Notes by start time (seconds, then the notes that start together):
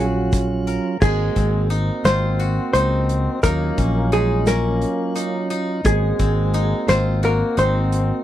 Already playing: A#1 F#3 C#4 D#4 F4 G#4 A#4
0.00 F#4
0.16 F#4
0.33 kick, closed hi-hat, shaker
0.67 A#4, closed hi-hat
1.01 G#1 G#3 A#3 C4 F#4 G#4, kick, crash, shaker
1.36 G#1 C4, kick, closed hi-hat, shaker
1.70 D#4, closed hi-hat, shaker
2.05 G#1 C4 F4 C5, snare, closed hi-hat, shaker
2.39 F#4, closed hi-hat
2.73 C#2 C4 D#4 C5, closed hi-hat, shaker
3.09 closed hi-hat
3.43 D#2 F#3 A#3 C#4 D#4 F4 A#4, kick, closed hi-hat, shaker
3.78 A#1 C#4, kick, closed hi-hat, shaker
4.12 G#3 D#4 G#4, closed hi-hat, shaker
4.47 A#3 C#4 A#4, snare, closed hi-hat, shaker
4.82 closed hi-hat
5.15 D#4, closed hi-hat, shaker
5.50 D#4, closed hi-hat
5.84 G#1 G#3 A#3 C4 F#4 G#4, kick, closed hi-hat, shaker
6.19 G#1 C4, kick, closed hi-hat, shaker
6.54 D#4, closed hi-hat, shaker
6.88 G#1 C4 F4 C5, snare, closed hi-hat, shaker
7.23 A#3 F#4 A#4, closed hi-hat
7.57 G#1 C4 D#4 C5, closed hi-hat, shaker
7.92 closed hi-hat